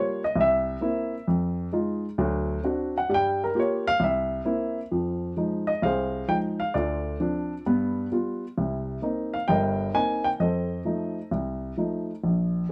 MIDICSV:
0, 0, Header, 1, 2, 480
1, 0, Start_track
1, 0, Tempo, 456621
1, 1333, Time_signature, 4, 2, 24, 8
1, 13369, End_track
2, 0, Start_track
2, 0, Title_t, "Grand piano"
2, 0, Program_c, 0, 0
2, 0, Note_on_c, 0, 55, 57
2, 0, Note_on_c, 0, 58, 49
2, 0, Note_on_c, 0, 65, 58
2, 0, Note_on_c, 0, 73, 82
2, 228, Note_off_c, 0, 55, 0
2, 232, Note_off_c, 0, 58, 0
2, 233, Note_off_c, 0, 65, 0
2, 235, Note_off_c, 0, 73, 0
2, 255, Note_on_c, 0, 75, 88
2, 373, Note_on_c, 0, 36, 75
2, 391, Note_off_c, 0, 75, 0
2, 426, Note_on_c, 0, 76, 89
2, 790, Note_off_c, 0, 36, 0
2, 853, Note_on_c, 0, 58, 56
2, 859, Note_on_c, 0, 60, 52
2, 861, Note_on_c, 0, 64, 66
2, 1188, Note_off_c, 0, 58, 0
2, 1192, Note_off_c, 0, 60, 0
2, 1193, Note_off_c, 0, 64, 0
2, 1317, Note_off_c, 0, 76, 0
2, 1341, Note_on_c, 0, 41, 70
2, 1753, Note_off_c, 0, 41, 0
2, 1814, Note_on_c, 0, 56, 54
2, 1818, Note_on_c, 0, 63, 53
2, 1820, Note_on_c, 0, 65, 65
2, 2148, Note_off_c, 0, 56, 0
2, 2150, Note_off_c, 0, 63, 0
2, 2151, Note_off_c, 0, 65, 0
2, 2293, Note_on_c, 0, 38, 73
2, 2297, Note_on_c, 0, 54, 79
2, 2708, Note_off_c, 0, 38, 0
2, 2710, Note_off_c, 0, 54, 0
2, 2772, Note_on_c, 0, 60, 54
2, 2777, Note_on_c, 0, 62, 55
2, 2781, Note_on_c, 0, 66, 66
2, 3106, Note_off_c, 0, 60, 0
2, 3109, Note_off_c, 0, 62, 0
2, 3111, Note_off_c, 0, 66, 0
2, 3128, Note_on_c, 0, 78, 84
2, 3254, Note_on_c, 0, 43, 68
2, 3254, Note_on_c, 0, 55, 76
2, 3265, Note_off_c, 0, 78, 0
2, 3304, Note_on_c, 0, 79, 98
2, 3587, Note_off_c, 0, 79, 0
2, 3614, Note_on_c, 0, 70, 79
2, 3668, Note_off_c, 0, 43, 0
2, 3668, Note_off_c, 0, 55, 0
2, 3731, Note_on_c, 0, 58, 57
2, 3733, Note_on_c, 0, 65, 56
2, 3735, Note_on_c, 0, 67, 64
2, 3747, Note_off_c, 0, 70, 0
2, 3780, Note_on_c, 0, 73, 78
2, 4065, Note_off_c, 0, 58, 0
2, 4065, Note_off_c, 0, 73, 0
2, 4066, Note_off_c, 0, 65, 0
2, 4067, Note_off_c, 0, 67, 0
2, 4073, Note_on_c, 0, 77, 114
2, 4203, Note_on_c, 0, 36, 71
2, 4216, Note_off_c, 0, 77, 0
2, 4244, Note_on_c, 0, 76, 80
2, 4622, Note_off_c, 0, 36, 0
2, 4679, Note_on_c, 0, 58, 56
2, 4683, Note_on_c, 0, 60, 49
2, 4685, Note_on_c, 0, 64, 65
2, 5019, Note_off_c, 0, 58, 0
2, 5021, Note_off_c, 0, 60, 0
2, 5022, Note_off_c, 0, 64, 0
2, 5064, Note_off_c, 0, 76, 0
2, 5167, Note_on_c, 0, 41, 56
2, 5167, Note_on_c, 0, 53, 59
2, 5584, Note_off_c, 0, 41, 0
2, 5584, Note_off_c, 0, 53, 0
2, 5642, Note_on_c, 0, 53, 53
2, 5647, Note_on_c, 0, 56, 47
2, 5651, Note_on_c, 0, 63, 53
2, 5963, Note_on_c, 0, 75, 85
2, 5980, Note_off_c, 0, 53, 0
2, 5983, Note_off_c, 0, 56, 0
2, 5985, Note_off_c, 0, 63, 0
2, 6122, Note_on_c, 0, 36, 66
2, 6130, Note_off_c, 0, 75, 0
2, 6131, Note_on_c, 0, 77, 85
2, 6148, Note_on_c, 0, 72, 65
2, 6151, Note_on_c, 0, 68, 59
2, 6542, Note_off_c, 0, 36, 0
2, 6604, Note_on_c, 0, 53, 48
2, 6607, Note_on_c, 0, 56, 45
2, 6608, Note_on_c, 0, 79, 90
2, 6612, Note_on_c, 0, 63, 53
2, 6624, Note_off_c, 0, 77, 0
2, 6680, Note_off_c, 0, 79, 0
2, 6934, Note_on_c, 0, 77, 83
2, 6942, Note_off_c, 0, 53, 0
2, 6944, Note_off_c, 0, 56, 0
2, 6946, Note_off_c, 0, 63, 0
2, 7057, Note_off_c, 0, 72, 0
2, 7058, Note_off_c, 0, 68, 0
2, 7080, Note_off_c, 0, 77, 0
2, 7088, Note_on_c, 0, 74, 78
2, 7094, Note_on_c, 0, 38, 61
2, 7101, Note_on_c, 0, 69, 56
2, 7105, Note_on_c, 0, 65, 50
2, 7509, Note_off_c, 0, 38, 0
2, 7567, Note_on_c, 0, 53, 49
2, 7568, Note_on_c, 0, 60, 47
2, 7576, Note_on_c, 0, 62, 59
2, 7905, Note_off_c, 0, 53, 0
2, 7905, Note_off_c, 0, 60, 0
2, 7909, Note_off_c, 0, 62, 0
2, 8008, Note_off_c, 0, 74, 0
2, 8014, Note_off_c, 0, 69, 0
2, 8016, Note_off_c, 0, 65, 0
2, 8056, Note_on_c, 0, 43, 66
2, 8057, Note_on_c, 0, 59, 74
2, 8470, Note_off_c, 0, 43, 0
2, 8471, Note_off_c, 0, 59, 0
2, 8533, Note_on_c, 0, 55, 47
2, 8538, Note_on_c, 0, 59, 46
2, 8544, Note_on_c, 0, 65, 61
2, 8868, Note_off_c, 0, 55, 0
2, 8871, Note_off_c, 0, 59, 0
2, 8873, Note_off_c, 0, 65, 0
2, 9013, Note_on_c, 0, 48, 63
2, 9016, Note_on_c, 0, 36, 60
2, 9430, Note_off_c, 0, 48, 0
2, 9431, Note_off_c, 0, 36, 0
2, 9483, Note_on_c, 0, 58, 54
2, 9490, Note_on_c, 0, 60, 49
2, 9492, Note_on_c, 0, 63, 60
2, 9813, Note_on_c, 0, 77, 84
2, 9824, Note_off_c, 0, 58, 0
2, 9827, Note_off_c, 0, 60, 0
2, 9829, Note_off_c, 0, 63, 0
2, 9962, Note_on_c, 0, 79, 90
2, 9970, Note_on_c, 0, 43, 70
2, 9974, Note_on_c, 0, 31, 73
2, 9978, Note_off_c, 0, 77, 0
2, 9986, Note_on_c, 0, 75, 69
2, 9988, Note_on_c, 0, 70, 66
2, 10389, Note_off_c, 0, 43, 0
2, 10391, Note_off_c, 0, 31, 0
2, 10414, Note_off_c, 0, 79, 0
2, 10452, Note_on_c, 0, 58, 51
2, 10455, Note_on_c, 0, 60, 45
2, 10456, Note_on_c, 0, 80, 94
2, 10457, Note_on_c, 0, 63, 59
2, 10768, Note_on_c, 0, 79, 90
2, 10785, Note_off_c, 0, 80, 0
2, 10790, Note_off_c, 0, 58, 0
2, 10791, Note_off_c, 0, 60, 0
2, 10792, Note_off_c, 0, 63, 0
2, 10821, Note_off_c, 0, 79, 0
2, 10900, Note_off_c, 0, 75, 0
2, 10901, Note_off_c, 0, 70, 0
2, 10930, Note_on_c, 0, 41, 59
2, 10934, Note_on_c, 0, 75, 74
2, 10948, Note_on_c, 0, 72, 55
2, 10951, Note_on_c, 0, 69, 58
2, 11350, Note_off_c, 0, 41, 0
2, 11406, Note_on_c, 0, 53, 48
2, 11411, Note_on_c, 0, 57, 48
2, 11416, Note_on_c, 0, 63, 51
2, 11747, Note_off_c, 0, 53, 0
2, 11750, Note_off_c, 0, 57, 0
2, 11753, Note_off_c, 0, 63, 0
2, 11854, Note_off_c, 0, 75, 0
2, 11862, Note_off_c, 0, 72, 0
2, 11863, Note_off_c, 0, 69, 0
2, 11894, Note_on_c, 0, 36, 66
2, 12313, Note_off_c, 0, 36, 0
2, 12377, Note_on_c, 0, 53, 50
2, 12383, Note_on_c, 0, 57, 43
2, 12388, Note_on_c, 0, 63, 54
2, 12714, Note_off_c, 0, 53, 0
2, 12717, Note_off_c, 0, 57, 0
2, 12719, Note_off_c, 0, 63, 0
2, 12862, Note_on_c, 0, 34, 60
2, 13278, Note_off_c, 0, 34, 0
2, 13369, End_track
0, 0, End_of_file